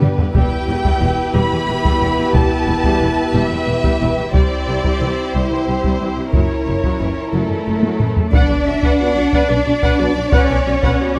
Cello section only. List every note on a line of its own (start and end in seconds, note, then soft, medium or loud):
0.03 0.09 G2 soft
0.19 0.25 G2 soft
0.36 0.42 E2 medium
0.69 0.76 E2 soft
0.85 0.92 E2 medium
1.02 1.09 E2 soft
1.35 1.42 E2 medium
1.52 1.59 E2 soft
1.68 1.75 E2 soft
1.85 1.92 E2 medium
2.02 2.09 E2 soft
2.19 2.25 E2 soft
2.35 2.42 E2 medium
2.68 2.75 E2 soft
2.86 2.92 E2 medium
3.02 3.09 E2 soft
3.35 3.42 E2 medium
3.52 3.58 E2 soft
3.69 3.75 E2 soft
3.85 3.91 E2 medium
4.02 4.08 E2 soft
4.19 4.25 E2 soft
4.35 4.42 C2 medium
4.68 4.74 C2 soft
4.84 4.91 C2 medium
5.01 5.08 C2 soft
5.35 5.41 C2 soft
5.51 5.58 C2 soft
5.68 5.75 C2 soft
5.84 5.91 C2 soft
6.01 6.08 C2 soft
6.17 6.24 C2 soft
6.34 6.41 F#2 soft
6.67 6.74 F#2 soft
6.84 6.90 F#2 soft
7.01 7.08 F#2 soft
7.34 7.40 F#2 soft
7.34 8.30 A3 medium
7.50 7.57 F#2 soft
7.67 7.74 F#2 soft
7.83 7.90 F#2 soft
8.01 8.07 F#2 soft
8.17 8.24 F#2 soft
8.34 10.33 D4 medium
10.34 11.19 C#4 medium